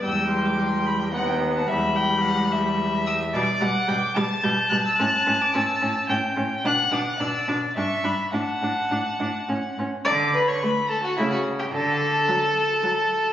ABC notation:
X:1
M:3/4
L:1/16
Q:1/4=109
K:Em
V:1 name="Violin"
e'2 c' d' c'2 b g f g2 a | b8- b2 e'2 | [K:D] d'6 a'2 g'2 f' e' | f'3 d' e'4 z4 |
f'2 d' f' e'2 d'2 c'2 b2 | a8 z4 | d'2 b c' b2 a f e f2 g | a12 |]
V:2 name="Violin"
g8 f4 | e2 g2 f2 e6 | [K:D] d2 f2 g2 a6- | a8 g4 |
f4 d4 e4 | f8- f2 z2 | d2 B c B2 A F E F2 G | A12 |]
V:3 name="Viola"
G,8 B,4 | G,12 | [K:D] G,2 G,2 G,2 G,2 G,2 G,2 | C2 C2 C2 C2 C2 C2 |
D2 D2 D2 D2 D2 D2 | D2 D2 D2 D2 C2 C2 | z4 A,4 A,4 | z4 F,4 F,4 |]
V:4 name="Cello" clef=bass
E,,8 ^D,,4 | E,,12 | [K:D] B,,2 B,,2 B,,2 B,,2 B,,2 B,,2 | A,,2 A,,2 A,,2 A,,2 A,,2 A,,2 |
B,,2 B,,2 B,,2 B,,2 G,,2 G,,2 | A,,2 A,,2 A,,2 A,,2 A,,2 A,,2 | D,4 z4 C,4 | D,4 z8 |]